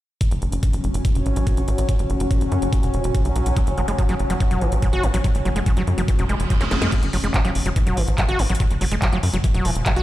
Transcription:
0.21 F#3 C#4, kick, closed hi-hat
0.31 F#1, closed hi-hat
0.42 F#1, closed hi-hat
0.52 F#1, closed hi-hat
0.63 kick, closed hi-hat
0.73 F#1, closed hi-hat
0.84 F#1, closed hi-hat
0.94 F#1, closed hi-hat
1.05 kick, closed hi-hat
1.15 E1, closed hi-hat
1.26 A1, closed hi-hat
1.36 A1, closed hi-hat
1.47 kick, closed hi-hat
1.57 A1, closed hi-hat
1.68 A1, closed hi-hat
1.78 A1, closed hi-hat
1.89 kick, closed hi-hat
1.99 F#1, closed hi-hat
2.10 F#1, closed hi-hat
2.20 F#1, closed hi-hat
2.31 kick, closed hi-hat
2.41 F#1, closed hi-hat
2.52 F#2, closed hi-hat
2.62 F#1, closed hi-hat
2.73 kick, closed hi-hat
2.83 E1, closed hi-hat
2.94 E1, closed hi-hat
3.04 E1, closed hi-hat
3.15 kick, closed hi-hat
3.25 B1, closed hi-hat
3.36 B1, closed hi-hat
3.46 B1, closed hi-hat
3.57 F#3, kick, closed hi-hat
3.67 F#1, closed hi-hat
3.77 F#1 F#3, closed hi-hat
3.88 F#1 G#3, closed hi-hat
3.98 F#3, kick, closed hi-hat
4.09 F#1 F#3, closed hi-hat
4.19 F#1, closed hi-hat
4.30 F#1 F#3, closed hi-hat
4.40 E3, kick, closed hi-hat
4.51 E1 F#3, closed hi-hat
4.61 A1 E3, closed hi-hat
4.72 A1, closed hi-hat
4.82 F#3, kick, closed hi-hat
4.93 A1 F#4, closed hi-hat
5.03 A1 F#3, closed hi-hat
5.14 A1 F#3, closed hi-hat
5.24 F#3, kick, closed hi-hat
5.35 F#1, closed hi-hat
5.45 F#1 F#3, closed hi-hat
5.56 F#1 G#3, closed hi-hat
5.66 F#3, kick, closed hi-hat
5.77 F#1 F#3, closed hi-hat
5.87 F#2, closed hi-hat
5.98 F#1 F#3, closed hi-hat
6.08 E3, kick, closed hi-hat, reverse cymbal
6.19 E1 F#3, closed hi-hat
6.29 F#1 G#3, closed hi-hat
6.40 F#1, closed hi-hat
6.50 F#3, kick, closed hi-hat
6.61 F#1 C#4, snare, closed hi-hat
6.71 F#1 F#3, snare, closed hi-hat
6.82 F#2 G#3, snare, closed hi-hat
6.92 F#3, kick, closed hi-hat, crash
7.03 F#1, closed hi-hat
7.13 F#1 F#3, open hi-hat
7.24 F#1 G#3, closed hi-hat
7.34 F#3, kick, clap, closed hi-hat
7.45 F#1 F#3, closed hi-hat
7.55 F#1, open hi-hat
7.66 F#1 F#3, closed hi-hat
7.76 E3, kick, closed hi-hat
7.87 E1 F#3, closed hi-hat
7.97 A1 E3, open hi-hat
8.08 A1, closed hi-hat
8.18 F#3, kick, clap, closed hi-hat
8.29 A1 F#4, closed hi-hat
8.39 A1 F#3, open hi-hat
8.50 A1 F#3, closed hi-hat
8.55 closed hi-hat
8.60 F#3, kick, closed hi-hat
8.71 F#1, closed hi-hat
8.81 F#1 F#3, open hi-hat
8.92 F#1 G#3, closed hi-hat
9.02 F#3, kick, clap, closed hi-hat
9.12 F#1 F#3, closed hi-hat
9.23 F#2, open hi-hat
9.33 F#1 F#3, closed hi-hat
9.44 E3, kick, closed hi-hat
9.54 E1 F#3, closed hi-hat
9.65 E1 E3, open hi-hat
9.75 E1, closed hi-hat
9.86 F#3, kick, clap, closed hi-hat
9.96 B1 F#4, closed hi-hat

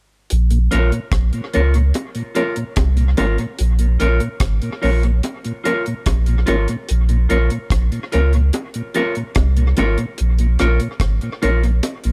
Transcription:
0.30 A#1, closed hi-hat
0.50 A#2, closed hi-hat
0.71 A#1 F3 A#3 C#4 F4 A#4 C#5, closed hi-hat
0.92 A#2, closed hi-hat
1.12 A#1, kick, cross-stick, closed hi-hat
1.33 A#2, closed hi-hat
1.53 C#2 F3 A#3 C#4 F4 A#4 C#5, closed hi-hat
1.74 A#2, closed hi-hat
1.94 closed hi-hat, high bongo
2.15 A#2, closed hi-hat
2.35 F3 A#3 C#4 F4 A#4 C#5, closed hi-hat, high bongo
2.56 A#2, closed hi-hat
2.76 C2, kick, cross-stick, closed hi-hat, high bongo
2.97 A#2, closed hi-hat
3.17 G#1 F3 A#3 C#4 F4 A#4 C#5, closed hi-hat, high bongo, low bongo
3.38 A#2, closed hi-hat
3.59 A#1, closed hi-hat
3.79 A#2, closed hi-hat
4.00 A#1 F3 A#3 C#4 F4 A#4 C#5, closed hi-hat
4.20 A#2, closed hi-hat
4.40 G#1, kick, cross-stick, closed hi-hat
4.62 A#2, closed hi-hat
4.82 A#1 F3 A#3 C#4 F4 A#4 C#5, open hi-hat
5.03 A#2, closed hi-hat
5.23 closed hi-hat, high bongo
5.44 A#2, closed hi-hat
5.64 F3 A#3 C#4 F4 A#4 C#5, closed hi-hat, high bongo
5.86 A#2, closed hi-hat
6.06 A#1, kick, cross-stick, closed hi-hat, high bongo
6.26 A#2, closed hi-hat
6.46 G#1 F3 A#3 C#4 F4 A#4 C#5, closed hi-hat, high bongo, low bongo
6.68 A#2, closed hi-hat
6.89 A#1, closed hi-hat
7.09 A#2, closed hi-hat
7.29 A#1 F3 A#3 C#4 F4 A#4 C#5, closed hi-hat
7.50 A#2, closed hi-hat
7.70 A#1, kick, cross-stick, closed hi-hat
7.92 A#2, closed hi-hat
8.12 C#2 F3 A#3 C#4 F4 A#4 C#5, closed hi-hat
8.33 A#2, closed hi-hat
8.53 closed hi-hat, high bongo
8.74 A#2, closed hi-hat
8.94 F3 A#3 C#4 F4 A#4 C#5, closed hi-hat, high bongo
9.15 A#2, closed hi-hat
9.35 C2, kick, cross-stick, closed hi-hat, high bongo
9.57 A#2, closed hi-hat
9.77 G#1 F3 A#3 C#4 F4 A#4 C#5, closed hi-hat, high bongo, low bongo
9.98 A#2, closed hi-hat
10.18 A#1, closed hi-hat
10.39 A#2, closed hi-hat
10.59 A#1 F3 A#3 C#4 F4 A#4 C#5, cross-stick, closed hi-hat
10.80 A#2, closed hi-hat
11.00 G#1, kick, cross-stick, closed hi-hat
11.21 A#2, closed hi-hat
11.42 A#1 F3 A#3 C#4 F4 A#4 C#5, closed hi-hat, low bongo
11.63 A#2, closed hi-hat
11.83 closed hi-hat, high bongo
12.04 A#1 A#2, closed hi-hat

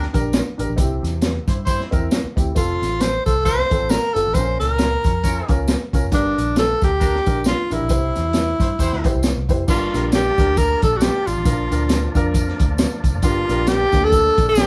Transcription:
0.02 snare
0.13 A#1 D4 G4 A#4, kick, closed hi-hat, tambourine
0.33 snare, closed hi-hat, tambourine
0.58 A1 D4 G4 A#4, closed hi-hat, tambourine
0.69 A#1
0.76 C2 C3 C4 E4 G4, kick, closed hi-hat, tambourine
1.03 E2, snare, closed hi-hat, tambourine
1.22 snare, closed hi-hat, tambourine
1.47 G2 E4 G4 C5, kick, closed hi-hat, tambourine
1.65 E4 G4 C5, kick, closed hi-hat, tambourine
1.80 snare
1.91 E2 C4 E4 A#4, kick, closed hi-hat, tambourine
2.11 snare, closed hi-hat, tambourine
2.24 muted picked electric bass stroke
2.36 D2 C4 E4 G4, kick, closed hi-hat, tambourine
2.55 F1 C4 F4 A4, kick, closed hi-hat, tambourine
2.82 A1, snare, closed hi-hat, tambourine
3.00 C5, snare, closed hi-hat, tambourine
3.26 C2 F4 A4 C5, kick, closed hi-hat, tambourine
3.45 F4 A4 C5, kick, closed hi-hat, tambourine
3.59 snare
3.70 A1 C4 F4 A4, kick, closed hi-hat, tambourine
3.89 A#4, snare, closed hi-hat, tambourine
4.14 G1 C4 F4 A4, closed hi-hat, tambourine
4.27 A1
4.33 A#1 A#2 C4 F4 A#4 C5, kick, closed hi-hat, tambourine
4.39 C#4
4.60 C#2 A#4, snare, closed hi-hat, tambourine
4.78 snare, closed hi-hat, tambourine
5.04 F2 C#4 F4 A#4, kick, closed hi-hat, tambourine
5.23 C#4 F4 A#4, kick, closed hi-hat, tambourine
5.48 C#2 C#4 F4 A#4, kick, closed hi-hat, tambourine
5.68 snare, closed hi-hat, tambourine
5.93 C2 C#4 F4 A#4, kick, closed hi-hat, tambourine
6.03 F1
6.11 G1 G2 D4 G4 A#4, kick, closed hi-hat, tambourine
6.38 A#1, closed hi-hat, tambourine
6.56 A4, snare, closed hi-hat, tambourine
6.81 D2 D4 G4 A#4, kick, closed hi-hat, tambourine
7.00 D4 G4 A#4, kick, closed hi-hat, tambourine
7.15 snare
7.26 A#1 D4 G4 A#4, kick, closed hi-hat, tambourine
7.44 F4, snare, closed hi-hat, tambourine
7.70 A1 D4 E4 G4 A#4, closed hi-hat, tambourine
7.81 A#1
7.89 C2 C3 E4 G4 C5, kick, closed hi-hat, tambourine
8.16 E2, snare, closed hi-hat, tambourine
8.33 snare, closed hi-hat, tambourine
8.60 G2 E4 G4 C5, kick, closed hi-hat, tambourine
8.79 E2 E4 G4 C5, kick, closed hi-hat, tambourine
8.92 D2, snare
9.03 E4 G4 C5, kick, closed hi-hat, tambourine
9.15 C2
9.23 snare, closed hi-hat, tambourine
9.37 C2
9.48 F1 E4 G4 C5, kick, closed hi-hat, tambourine
9.67 G1 G2 D3 G3 A#3 D4 F4 G4 A#4, kick, crash, tambourine
9.93 A#1 D4 G4 A#4, snare, closed hi-hat, tambourine
10.12 G4, snare, closed hi-hat, tambourine
10.38 D2 D4 G4 A#4, kick, closed hi-hat, tambourine
10.57 A#4, kick, closed hi-hat, tambourine
10.82 A#1 A4, kick, closed hi-hat, tambourine
10.97 F#4, tambourine
11.01 G4, snare, closed hi-hat
11.27 A1 F4, closed hi-hat, tambourine
11.37 A1
11.45 A#1 A#2 F3 D4 F4 A#4, kick, closed hi-hat, tambourine
11.71 D2 D4 F4 A#4, closed hi-hat, tambourine
11.89 snare, closed hi-hat, tambourine
12.14 F2 D4 F4 A#4, kick, closed hi-hat, tambourine
12.34 kick, closed hi-hat, tambourine
12.48 snare
12.59 D2, kick, closed hi-hat, tambourine
12.78 snare, closed hi-hat, tambourine
13.04 C2, kick, closed hi-hat, tambourine
13.14 F1
13.22 G1 G2 G3 D4 F4 G4 A#4, kick, closed hi-hat, tambourine
13.48 A#1 D4 G4 A#4, snare, closed hi-hat, tambourine
13.67 G4, snare, closed hi-hat, tambourine
13.92 D2 A#3 D4 G4, kick, closed hi-hat, tambourine
14.04 A4
14.12 kick, closed hi-hat, tambourine
14.38 A#1, kick, closed hi-hat, tambourine
14.49 G4
14.55 snare, closed hi-hat, tambourine

